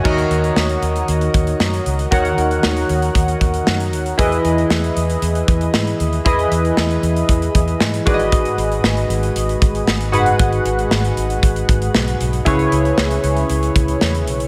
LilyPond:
<<
  \new Staff \with { instrumentName = "Synth keys" } { \time 4/4 \key dis \phrygian \tempo 4 = 116 << { <fis' ais' cis'' dis''>1 | <fis' ais' cis'' fis''>1 | <e' gis' b' dis''>1 | <e' gis' b' dis''>2.~ <e' gis' b' dis''>8 <fis' gis' b' d'' dis''>8~ |
<fis' gis' b' d'' dis''>2.~ <fis' gis' b' d'' dis''>8 <fis' gis' b' fis''>8~ | <fis' gis' b' fis''>2.~ <fis' gis' b' fis''>8 r8 | <e' gis' b' cis''>1 | } \\ { dis4. r2 r8 | dis4. r2 r8 | e4. r2 r8 | e4. r2 gis,8~ |
gis,4 r2 r8 gis,8~ | gis,4 r2. | cis4. r2 r8 | } >> }
  \new Staff \with { instrumentName = "Fingered electric bass" } { \clef bass \time 4/4 \key dis \phrygian dis,8 dis,8 dis,8 dis,8 dis,8 dis,8 fis,8 cis,8 | dis,8 dis,8 dis,8 dis,8 dis,8 dis,8 fis,8 dis,8 | e,8 e,8 e,8 e,8 e,8 e,8 gis,8 dis,8 | e,8 e,8 e,8 e,8 e,8 e,8 gis,8 gis,,8~ |
gis,,8 gis,,8 gis,,8 gis,,8 gis,,8 gis,,8 gis,,8 fis,,8 | gis,,8 gis,,8 gis,,8 gis,,8 gis,,8 gis,,8 b,,8 b,,8 | cis,8 cis,8 cis,8 cis,8 cis,8 cis,8 e,8 b,,8 | }
  \new DrumStaff \with { instrumentName = "Drums" } \drummode { \time 4/4 <cymc bd>16 hh16 hh16 hh16 sn16 hh16 hh16 hh16 hh16 hh16 <hh bd>16 hh16 sn16 hh16 hh16 hh16 | <hh bd>16 hh16 hh16 hh16 sn16 hh16 hh16 hh16 <hh bd>16 hh16 <hh bd>16 hh16 sn16 hh16 hh16 hh16 | <hh bd>16 hh16 hh16 hh16 sn16 hh16 hh16 hh16 hh16 hh16 <hh bd>16 hh16 sn16 hh16 hh16 hh16 | <hh bd>16 hh16 hh16 hh16 sn16 hh16 hh16 hh16 <hh bd>16 hh16 <hh bd>16 hh16 sn16 hh16 <hh bd>16 hh16 |
<hh bd>16 hh16 hh16 hh16 sn16 hh16 hh16 hh16 hh16 hh16 <hh bd>16 hh16 sn16 hh16 hh16 hh16 | <hh bd>16 hh16 hh16 hh16 sn16 hh16 hh16 hh16 <hh bd>16 hh16 <hh bd>16 hh16 sn16 hh16 hh16 hh16 | <hh bd>16 hh16 hh16 hh16 sn16 hh16 hh16 hh16 hh16 hh16 <hh bd>16 hh16 sn16 hh16 hh16 hh16 | }
>>